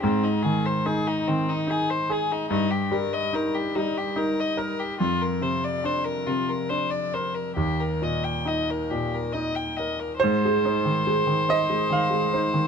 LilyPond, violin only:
\new Staff \with { instrumentName = "Violin" } { \time 3/4 \key ees \major \tempo 4 = 72 c'16 ees'16 aes'16 c''16 aes'16 ees'16 c'16 ees'16 aes'16 c''16 aes'16 ees'16 | ees'16 g'16 bes'16 ees''16 bes'16 g'16 ees'16 g'16 bes'16 ees''16 bes'16 g'16 | f'16 bes'16 c''16 d''16 c''16 bes'16 f'16 bes'16 c''16 d''16 c''16 bes'16 | g'16 bes'16 ees''16 g''16 ees''16 bes'16 g'16 bes'16 ees''16 g''16 ees''16 bes'16 |
c''2. | }